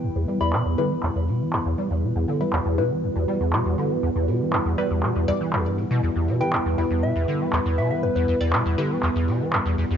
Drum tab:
HH |-o-o-o-o|-o-o-o-o|-o-o-o-o|-o-o-o-o|
CP |--x-x-x-|--x---x-|--x-x-x-|--x---x-|

HH |-o-o-o-o|
CP |--x-x-x-|